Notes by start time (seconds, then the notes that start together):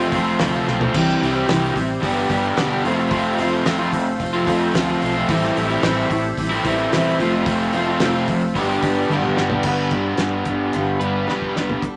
Already playing: F3 A3 C4 F4 A4 C5
0.00 F3 A3 C4
0.11 F1 F3 A3 C4 F4, kick, open hi-hat
0.39 D2 F2 C3 F3 A3 C4 F4, snare, open hi-hat
0.53 F3 A3 C4 F4
0.66 B1 F3 A3 C4 F4, snare
0.80 F3 A3 C4 F4, floor tom
0.94 C2 C3 E3 G3 C4 E4 G4 C5, kick, crash
1.09 snare
1.20 C2 E3 G3 C4 G4, open hi-hat
1.35 G3 C4 G4
1.47 C2 C3 E3 G3 C4 G4, snare, open hi-hat
1.61 G3 C4 G4
1.75 A1 G3 C4 G4, muted overdriven electric guitar stroke, kick, open hi-hat
2.01 G1 G2 D3 G3 B3 D4 G4 B4, kick, open hi-hat
2.15 G3 B3 D4 G4
2.28 G1 G3 B3 D4 G4, kick, open hi-hat
2.34 G3
2.56 E1 G2 D3 G3 B3 D4 G4, snare, open hi-hat
2.70 G3 B3 D4 G4
2.83 F1 F2 C3 F3 A3 C4 F4 A4 C5, open hi-hat
2.97 F3 A3 C4 F4
3.09 F1 F2 C3 F3 A3 C4 F4, kick, open hi-hat
3.37 F1 F3 A3 C4 F4, open hi-hat
3.51 F3 A3 C4 F4
3.65 F1 F2 C3 F3 A3 C4 F4, snare, open hi-hat
3.79 F3 A3 C4 F4
3.92 F1 A3 C4 F4, muted overdriven electric guitar stroke, kick, open hi-hat
4.18 F1 F3 A3 C4 F4, kick, open hi-hat
4.33 F3 A3 C4 F4
4.47 F1 F3 A3 C4 F4, kick, open hi-hat
4.74 D2 F2 C3 F3 A3 C4 F4, snare, open hi-hat
4.87 F3 A3 C4 F4
5.00 B1 F3 A3 C4 F4, open hi-hat
5.14 F3 A3 C4 F4
5.28 A1 A2 E3 G3 A3 C4 E4 G4 A4 C5, kick, open hi-hat
5.44 snare
5.55 A1 E3 A3 C4 E4, open hi-hat
5.59 G3
5.68 A3 C4 E4
5.82 A1 A2 E3 G3 A3 C4 E4, snare, open hi-hat
5.95 A3 C4 E4
6.09 A1 G3 C4 E4, muted overdriven electric guitar stroke, kick, open hi-hat
6.37 A1 E3 G3 C4 E4, kick, open hi-hat
6.50 A3 C4 E4
6.64 A1 E3 G3 A3 C4 E4, kick, open hi-hat
6.91 E1 A2 E3 G3 A3 C4, snare, open hi-hat
6.95 E4
7.05 A3 C4 E4
7.18 F1 F2 C3 F3 A3 C4 F4 A4 C5, open hi-hat
7.32 F3 A3 C4 F4
7.46 F1 F2 C3 F3 A3 C4 F4, kick, open hi-hat
7.73 F1 F3 A3 C4 F4, open hi-hat
7.87 F3 A3 C4 F4
8.00 F1 F2 C3 F3 A3 C4 F4, snare, open hi-hat
8.13 F3 A3 C4 F4
8.28 F1 F3 A3 C4 F4, muted overdriven electric guitar stroke, kick, open hi-hat
8.55 G1 G2 D3 G3 B3 D4 G4 B4, kick, open hi-hat
8.69 G3 B3 D4 G4
8.82 G1 G3 B3 D4 G4, kick, open hi-hat
9.09 F1 G2 D3 G3 B3 D4 G4, high tom
9.23 G3 B3 D4 G4, mid tom
9.36 G2 G3 B3 D4 G4, snare
9.50 G3 B3 D4 G4, floor tom
9.63 G1 G2 D3 G3 B3 D4 G4, kick, crash
9.67 B4
9.91 G2 G3 B3 D4 G4, kick, closed hi-hat
10.18 G2 G3 B3 D4 G4, snare, closed hi-hat
10.45 G1 G3 B3 D4 G4, kick, closed hi-hat
10.73 G1 G2 D3 G3 B3 D4 G4, closed hi-hat
11.00 G2 G3 B3 D4 B4, closed hi-hat
11.27 F1 G3 B3 D4 G4 B4, snare
11.42 kick
11.54 F1 G3 B3 D4 G4, snare
11.70 floor tom
11.82 G3 B3 D4 A4, kick, closed hi-hat